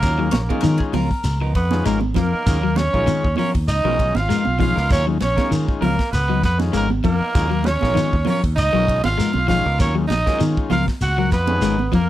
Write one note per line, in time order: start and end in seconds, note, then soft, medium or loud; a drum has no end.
0.00 0.29 D#2 loud
0.00 0.19 F#3 medium
0.00 0.60 A#3 medium
0.00 0.19 C#4 medium
0.00 0.18 F4 medium
0.00 0.59 A#4 loud
0.00 0.18 A#4 medium
0.00 kick loud
0.00 ride bell medium
0.00 shekere medium
0.19 0.29 D#3 medium
0.19 0.36 F#3 medium
0.19 0.30 G#3 medium
0.19 0.29 C#4 medium
0.19 0.30 F4 medium
0.19 muted clean electric guitar stroke soft
0.31 0.47 A#1 medium
0.31 0.40 C#5 loud
0.31 muted clean electric guitar stroke soft
0.31 snare medium
0.31 ride bell soft
0.31 high conga loud
0.31 low conga medium
0.31 shekere soft
0.49 0.94 D#3 medium
0.49 0.67 F#3 medium
0.49 0.94 G#3 medium
0.49 0.67 C#4 medium
0.49 0.95 C#4 medium
0.49 0.66 F4 medium
0.49 0.94 F4 loud
0.49 0.66 A#4 medium
0.49 kick medium
0.49 ride bell medium
0.49 high conga medium
0.61 0.80 D#3 medium
0.61 0.78 D#3 medium
0.61 0.79 A#4 loud
0.61 ride bell medium
0.61 high conga medium
0.61 low conga medium
0.61 shekere medium
0.78 0.83 G#4 medium
0.78 muted clean electric guitar stroke medium
0.78 kick medium
0.93 1.08 C#2 medium
0.93 1.11 F3 medium
0.93 1.10 F#3 medium
0.93 1.10 C#4 medium
0.93 1.10 F4 medium
0.93 1.38 A#4 medium
0.93 1.10 A#4 medium
0.93 open hi-hat medium
0.93 high conga medium
0.93 low conga medium
0.93 shekere soft
1.11 muted clean electric guitar stroke medium
1.11 kick medium
1.24 1.55 C#2 loud
1.24 muted clean electric guitar stroke soft
1.24 snare soft
1.24 ride bell medium
1.24 shekere medium
1.41 1.53 F3 medium
1.41 1.54 B3 medium
1.41 1.54 D#4 medium
1.41 1.54 A#4 medium
1.41 muted clean electric guitar stroke medium
1.55 1.81 F2 loud
1.55 1.84 B3 medium
1.55 1.83 B4 medium
1.55 kick medium
1.55 ride bell medium
1.55 shekere soft
1.71 2.00 D#3 medium
1.71 2.00 G#3 medium
1.71 2.00 C#4 medium
1.71 2.00 F4 medium
1.71 snare soft
1.71 high conga medium
1.85 2.12 G#1 medium
1.85 2.02 F3 medium
1.85 2.03 G#3 medium
1.85 1.99 A#3 medium
1.85 2.01 B3 medium
1.85 2.01 D#4 medium
1.85 1.99 A#4 medium
1.85 2.00 A#4 medium
1.85 snare soft
1.85 ride bell medium
1.85 shekere medium
2.01 muted clean electric guitar stroke soft
2.01 high conga medium
2.14 2.31 F2 loud
2.14 2.34 F3 medium
2.14 2.80 A#3 medium
2.14 2.78 A#4 loud
2.14 muted clean electric guitar stroke soft
2.14 kick medium
2.14 snare soft
2.14 ride bell medium
2.14 low conga loud
2.14 shekere soft
2.33 2.46 B3 soft
2.33 2.46 D#4 soft
2.33 2.46 A#4 soft
2.33 muted fingered electric bass stroke soft
2.46 2.87 D#2 loud
2.46 2.59 D#3 medium
2.46 2.63 F#3 medium
2.46 2.59 G#3 medium
2.46 2.63 C#4 medium
2.46 2.59 C#4 medium
2.46 2.59 F4 medium
2.46 2.62 A#4 medium
2.46 muted clean electric guitar stroke medium
2.46 kick loud
2.46 ride bell medium
2.46 shekere medium
2.63 2.81 F#3 medium
2.76 2.83 C#4 medium
2.76 3.38 C#4 medium
2.76 2.84 G#4 medium
2.76 3.36 C#5 loud
2.76 muted clean electric guitar stroke soft
2.76 snare medium
2.76 ride bell medium
2.76 high conga loud
2.76 low conga medium
2.76 shekere soft
2.93 3.06 A#1 medium
2.93 3.28 D#3 medium
2.93 3.11 F#3 medium
2.93 3.28 G#3 medium
2.93 3.11 C#4 medium
2.93 3.28 C#4 medium
2.93 3.11 F4 medium
2.93 3.28 F4 loud
2.93 3.11 A#4 medium
2.93 kick medium
3.07 3.25 D#3 loud
3.07 ride bell medium
3.07 high conga medium
3.07 shekere medium
3.23 3.36 D#2 medium
3.23 muted clean electric guitar stroke soft
3.23 kick medium
3.36 3.55 F3 medium
3.36 3.55 F#3 medium
3.36 3.52 C#4 medium
3.36 3.54 C#4 medium
3.36 3.54 F4 medium
3.36 3.53 A#4 medium
3.36 3.51 C#5 loud
3.36 open hi-hat medium
3.36 high conga medium
3.36 low conga medium
3.36 shekere soft
3.55 3.67 D#2 medium
3.55 muted clean electric guitar stroke soft
3.55 kick medium
3.55 ride bell medium
3.68 3.82 C#2 loud
3.68 4.19 D#4 medium
3.68 4.17 D#5 loud
3.68 muted clean electric guitar stroke soft
3.68 ride bell medium
3.68 shekere medium
3.84 4.11 B1 medium
3.84 4.14 D#3 medium
3.84 3.98 F3 medium
3.84 4.02 F#3 medium
3.84 4.14 G#3 medium
3.84 3.98 B3 medium
3.84 4.14 C#4 medium
3.84 3.98 D#4 medium
3.84 4.14 F4 medium
3.84 3.98 A#4 medium
3.99 muted clean electric guitar stroke soft
3.99 kick medium
3.99 ride bell soft
3.99 shekere soft
4.15 4.27 G#1 loud
4.15 4.61 F4 medium
4.15 4.59 F5 loud
4.15 snare soft
4.15 ride bell soft
4.15 high conga medium
4.29 4.46 F3 medium
4.29 4.47 G#3 medium
4.29 4.45 B3 medium
4.29 4.45 D#4 medium
4.29 4.44 A#4 medium
4.29 muted fingered electric bass stroke soft
4.29 snare soft
4.29 ride bell medium
4.29 shekere medium
4.45 4.73 B1 medium
4.45 muted clean electric guitar stroke soft
4.45 high conga medium
4.59 4.79 D#3 medium
4.59 4.77 F3 medium
4.59 4.79 G#3 medium
4.59 4.79 C#4 medium
4.59 4.79 F4 medium
4.59 4.89 F4 loud
4.59 4.88 F5 loud
4.59 muted clean electric guitar stroke soft
4.59 kick medium
4.59 open hi-hat medium
4.59 high conga medium
4.59 low conga loud
4.59 shekere soft
4.76 4.89 C#2 loud
4.76 4.89 B3 soft
4.76 4.90 D#4 soft
4.76 4.90 A#4 medium
4.76 snare soft
4.90 5.17 D#2 loud
4.90 5.07 F#3 medium
4.90 5.06 C#4 medium
4.90 5.05 C#4 loud
4.90 5.06 F4 medium
4.90 5.06 A#4 medium
4.90 5.06 C#5 loud
4.90 kick loud
4.90 snare soft
4.90 ride bell medium
4.90 shekere medium
5.07 5.18 D#3 medium
5.07 5.25 F#3 medium
5.07 5.18 G#3 medium
5.07 5.18 C#4 medium
5.07 5.18 F4 medium
5.07 muted clean electric guitar stroke soft
5.20 5.36 A#1 medium
5.20 5.55 C#4 medium
5.20 5.54 C#5 loud
5.20 muted clean electric guitar stroke soft
5.20 snare medium
5.20 ride bell soft
5.20 high conga medium
5.20 shekere soft
5.36 5.82 D#3 medium
5.36 5.55 F#3 medium
5.36 5.82 G#3 medium
5.36 5.55 C#4 medium
5.36 5.82 C#4 medium
5.36 5.54 F4 medium
5.36 5.82 F4 medium
5.36 5.54 A#4 medium
5.36 muted fingered electric bass stroke soft
5.36 kick medium
5.36 snare soft
5.36 ride bell soft
5.36 high conga medium
5.51 5.69 D#3 medium
5.51 5.66 D#3 loud
5.51 ride bell medium
5.51 shekere medium
5.67 muted clean electric guitar stroke soft
5.67 muted fingered electric bass stroke soft
5.67 kick medium
5.81 5.96 C#2 medium
5.81 6.00 F3 medium
5.81 5.98 F#3 medium
5.81 6.11 A#3 medium
5.81 5.96 C#4 medium
5.81 5.96 F4 medium
5.81 6.10 A#4 loud
5.81 5.96 A#4 medium
5.81 open hi-hat medium
5.81 high conga medium
5.81 low conga medium
5.81 shekere soft
5.97 muted clean electric guitar stroke soft
5.97 kick medium
5.97 snare soft
6.11 6.43 C#2 medium
6.11 6.42 B3 medium
6.11 6.41 B4 loud
6.11 muted clean electric guitar stroke soft
6.11 snare soft
6.11 ride bell medium
6.11 shekere medium
6.28 6.41 F3 medium
6.28 6.47 F#3 medium
6.28 6.41 B3 medium
6.28 6.41 D#4 medium
6.42 6.70 F2 medium
6.42 6.58 B3 medium
6.42 6.58 B4 loud
6.42 muted clean electric guitar stroke soft
6.42 kick medium
6.42 snare soft
6.42 ride bell medium
6.42 shekere soft
6.58 6.87 D#3 medium
6.58 6.88 G#3 medium
6.58 6.88 C#4 medium
6.58 6.88 F4 medium
6.58 snare soft
6.58 high conga medium
6.72 7.00 G#1 medium
6.72 6.90 F3 medium
6.72 6.91 G#3 medium
6.72 6.88 A#3 medium
6.72 6.89 B3 medium
6.72 6.90 D#4 medium
6.72 6.88 A#4 medium
6.72 ride bell soft
6.72 shekere medium
6.77 6.90 A#4 loud
6.90 muted clean electric guitar stroke soft
6.90 high conga loud
7.04 7.19 F2 medium
7.04 7.21 F3 medium
7.04 7.67 A#3 loud
7.04 7.68 A#4 loud
7.04 muted clean electric guitar stroke soft
7.04 kick medium
7.04 ride bell soft
7.04 low conga loud
7.04 shekere soft
7.20 7.34 B3 soft
7.20 7.34 D#4 soft
7.20 7.34 A#4 medium
7.20 muted fingered electric bass stroke soft
7.34 7.76 D#2 loud
7.34 7.47 D#3 medium
7.34 7.51 F#3 medium
7.34 7.47 G#3 medium
7.34 7.47 C#4 medium
7.34 7.51 C#4 medium
7.34 7.47 F4 loud
7.34 7.51 F4 medium
7.34 7.51 A#4 medium
7.34 kick loud
7.34 ride bell medium
7.34 shekere medium
7.50 7.68 F#3 medium
7.50 muted clean electric guitar stroke soft
7.64 7.71 C#4 medium
7.64 8.27 C#4 loud
7.64 7.71 F4 medium
7.64 8.27 C#5 loud
7.64 muted clean electric guitar stroke soft
7.64 snare medium
7.64 ride bell medium
7.64 high conga medium
7.64 low conga medium
7.64 shekere soft
7.81 7.94 A#1 medium
7.81 8.16 D#3 medium
7.81 8.00 F#3 medium
7.81 8.16 G#3 medium
7.81 8.16 C#4 medium
7.81 8.00 C#4 medium
7.81 8.16 F4 medium
7.81 7.99 F4 medium
7.81 7.99 A#4 medium
7.81 kick medium
7.81 snare soft
7.81 high conga medium
7.95 8.13 D#3 medium
7.95 snare soft
7.95 ride bell medium
7.95 high conga medium
7.95 low conga medium
7.95 shekere medium
8.13 8.25 D#2 medium
8.13 muted clean electric guitar stroke soft
8.13 kick medium
8.25 8.43 F3 medium
8.25 8.43 F#3 medium
8.25 8.42 C#4 medium
8.25 8.41 C#4 medium
8.25 8.42 F4 medium
8.25 8.41 A#4 medium
8.25 open hi-hat medium
8.25 high conga loud
8.25 low conga loud
8.25 shekere soft
8.29 8.43 C#5 medium
8.43 8.55 D#2 medium
8.43 muted clean electric guitar stroke soft
8.43 kick medium
8.43 ride bell medium
8.56 8.71 C#2 medium
8.56 9.00 D#4 loud
8.56 9.02 D#5 loud
8.56 muted clean electric guitar stroke soft
8.56 ride bell medium
8.56 shekere loud
8.73 9.00 B1 medium
8.73 9.02 D#3 medium
8.73 8.86 F3 medium
8.73 8.91 F#3 medium
8.73 9.02 G#3 medium
8.73 8.86 B3 medium
8.73 9.02 C#4 medium
8.73 8.86 D#4 medium
8.73 9.02 F4 medium
8.73 8.86 A#4 medium
8.87 muted clean electric guitar stroke soft
8.87 kick medium
8.87 ride bell medium
8.87 shekere soft
9.04 9.16 G#1 loud
9.04 9.45 F4 medium
9.04 9.46 F5 loud
9.04 snare soft
9.04 ride bell medium
9.04 high conga loud
9.18 9.35 F3 medium
9.18 9.35 G#3 medium
9.18 9.33 B3 soft
9.18 9.33 D#4 medium
9.18 9.32 A#4 medium
9.18 snare soft
9.18 ride bell medium
9.18 shekere medium
9.33 9.61 B1 medium
9.33 muted clean electric guitar stroke soft
9.33 high conga medium
9.47 9.67 D#3 medium
9.47 9.66 F3 medium
9.47 9.67 G#3 medium
9.47 9.67 C#4 medium
9.47 9.67 F4 loud
9.47 9.77 F4 loud
9.47 9.77 F5 loud
9.47 muted clean electric guitar stroke soft
9.47 kick medium
9.47 snare soft
9.47 open hi-hat medium
9.47 low conga loud
9.47 shekere soft
9.65 9.77 C#2 loud
9.65 9.78 B3 soft
9.65 9.78 D#4 soft
9.65 9.78 A#4 medium
9.78 10.06 D#2 loud
9.78 9.95 F#3 medium
9.78 9.96 C#4 medium
9.78 9.93 C#4 medium
9.78 9.95 F4 medium
9.78 9.95 A#4 loud
9.78 9.95 C#5 loud
9.78 kick loud
9.78 ride bell medium
9.78 shekere medium
9.95 10.06 D#3 medium
9.95 10.13 F#3 medium
9.95 10.06 G#3 medium
9.95 10.06 C#4 medium
9.95 10.06 F4 medium
9.95 muted clean electric guitar stroke soft
10.08 10.24 A#1 medium
10.08 10.41 D#4 loud
10.08 10.42 D#5 loud
10.08 muted clean electric guitar stroke soft
10.08 snare medium
10.08 ride bell soft
10.08 high conga medium
10.08 low conga medium
10.08 shekere soft
10.26 10.71 D#3 medium
10.26 10.44 F#3 medium
10.26 10.71 G#3 medium
10.26 10.71 C#4 medium
10.26 10.44 C#4 medium
10.26 10.44 F4 medium
10.26 10.71 F4 medium
10.26 10.43 A#4 medium
10.26 muted fingered electric bass stroke soft
10.26 kick medium
10.26 snare soft
10.26 ride bell soft
10.40 10.57 D#3 medium
10.40 10.55 D#3 loud
10.40 ride bell medium
10.40 high conga medium
10.40 shekere medium
10.57 muted clean electric guitar stroke soft
10.57 kick medium
10.70 10.85 C#2 medium
10.70 10.88 F3 medium
10.70 10.87 F#3 medium
10.70 10.84 F4 medium
10.70 10.88 F4 medium
10.70 10.87 A#4 medium
10.70 10.86 F5 loud
10.70 snare soft
10.70 open hi-hat medium
10.70 high conga medium
10.70 low conga medium
10.70 shekere soft
10.88 muted clean electric guitar stroke soft
10.88 kick medium
10.88 snare soft
11.01 11.32 C#2 loud
11.01 11.30 F#4 loud
11.01 11.30 F#5 loud
11.01 muted clean electric guitar stroke soft
11.01 ride bell medium
11.01 shekere medium
11.18 11.32 F3 medium
11.18 11.35 F#3 medium
11.18 11.32 A#4 medium
11.18 muted clean electric guitar stroke medium
11.31 11.58 F2 loud
11.31 11.89 B3 medium
11.31 11.89 B4 loud
11.31 muted clean electric guitar stroke soft
11.31 kick medium
11.31 snare soft
11.31 ride bell medium
11.31 shekere soft
11.47 11.77 D#3 medium
11.47 11.77 G#3 medium
11.47 11.77 C#4 medium
11.47 11.77 F4 medium
11.47 high conga medium
11.62 11.89 G#1 medium
11.62 11.79 F3 medium
11.62 11.79 G#3 medium
11.62 11.79 B3 medium
11.62 11.78 D#4 medium
11.62 11.78 A#4 medium
11.62 snare soft
11.62 ride bell soft
11.62 shekere loud
11.79 muted clean electric guitar stroke medium
11.79 high conga medium
11.92 12.07 F2 loud
11.92 12.10 F3 medium
11.92 12.07 A#3 medium
11.92 12.08 A#4 loud
11.92 muted clean electric guitar stroke soft
11.92 kick medium
11.92 ride bell soft
11.92 low conga loud
11.92 shekere soft